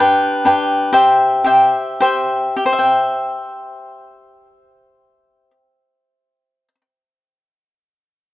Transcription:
0.00 0.44 D4 medium
0.00 0.45 G4 medium
0.00 0.45 B4 medium
0.00 0.46 G5 medium
0.45 0.92 D4 medium
0.45 0.93 G4 medium
0.45 0.93 B4 medium
0.45 0.93 G5 medium
0.93 1.44 G4 medium
0.93 1.45 C5 medium
0.93 1.46 E5 medium
0.93 1.46 G5 medium
1.44 2.00 G4 medium
1.44 2.01 C5 medium
1.44 2.02 E5 medium
1.44 2.02 G5 medium
2.00 2.57 G4 medium
2.00 2.56 C5 medium
2.00 2.72 E5 medium
2.00 2.78 G5 medium
2.57 2.65 G4 medium
2.66 6.68 C5 medium
2.73 6.75 E5 medium
2.79 6.81 G5 medium

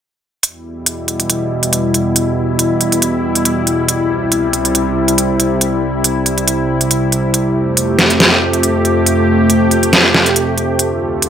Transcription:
0.43 3.85 E2 medium
0.43 3.85 B2 medium
0.43 7.30 G3 medium
0.43 7.30 E4 medium
0.43 closed hi-hat medium
0.86 closed hi-hat medium
1.08 closed hi-hat soft
1.20 closed hi-hat medium
1.30 closed hi-hat medium
1.63 closed hi-hat medium
1.73 closed hi-hat medium
1.94 closed hi-hat soft
2.16 closed hi-hat medium
2.59 closed hi-hat medium
2.81 closed hi-hat soft
2.92 closed hi-hat soft
3.02 closed hi-hat medium
3.35 closed hi-hat medium
3.45 closed hi-hat medium
3.67 closed hi-hat soft
3.88 7.30 C2 medium
3.88 10.75 C3 medium
3.88 closed hi-hat medium
4.32 closed hi-hat medium
4.53 closed hi-hat soft
4.65 closed hi-hat soft
4.75 closed hi-hat medium
5.08 closed hi-hat medium
5.18 closed hi-hat medium
5.40 closed hi-hat medium
5.61 closed hi-hat medium
6.04 closed hi-hat medium
6.26 closed hi-hat soft
6.38 closed hi-hat soft
6.48 closed hi-hat medium
6.81 closed hi-hat soft
6.91 closed hi-hat medium
7.12 closed hi-hat soft
7.34 10.76 F2 medium
7.34 10.76 A3 medium
7.34 10.76 G4 medium
7.34 closed hi-hat medium
7.77 closed hi-hat medium
7.99 snare medium
7.99 closed hi-hat soft
8.10 closed hi-hat soft
8.20 snare loud
8.20 closed hi-hat medium
8.53 closed hi-hat soft
8.63 closed hi-hat medium
8.85 closed hi-hat soft
9.06 closed hi-hat medium
9.50 closed hi-hat medium
9.71 closed hi-hat soft
9.83 closed hi-hat soft
9.93 snare loud
9.93 closed hi-hat medium
10.14 snare medium
10.26 closed hi-hat soft
10.36 closed hi-hat medium
10.58 closed hi-hat soft
10.79 11.29 D2 medium
10.79 11.29 D3 medium
10.79 11.29 A3 medium
10.79 11.29 F4 medium
10.79 closed hi-hat medium
11.22 closed hi-hat medium

